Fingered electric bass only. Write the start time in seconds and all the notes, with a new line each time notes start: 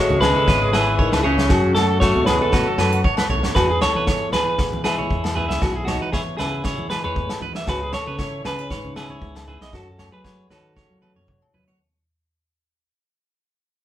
0.11 C#3
0.48 G#1
1.13 C#2
1.50 F#2
2.15 B2
2.53 B2
2.78 F#2
3.29 B1
3.55 E2
3.95 E3
4.33 E3
4.73 E3
5.10 E2
5.50 C#2
5.62 B1
6.01 E3
6.40 C#3
6.79 E3
7.05 E2
7.42 E3
7.67 C#2
8.07 C#3
8.45 C#3
8.84 C#3
9.21 C#2
9.61 B1
9.73 F#2
10.12 F#3
10.50 D#3
10.90 F#3
11.15 F#2
11.54 F#3